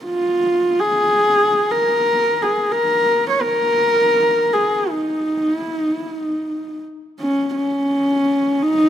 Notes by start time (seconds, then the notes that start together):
0.05 F4
0.80 G#4
1.71 A#4
2.42 G#4
2.72 A#4
3.29 C#5
3.41 A#4
4.53 G#4
4.90 D#4
5.58 E4
5.76 D#4
5.96 E4
6.14 D#4
7.20 C#4
7.55 C#4
8.62 D#4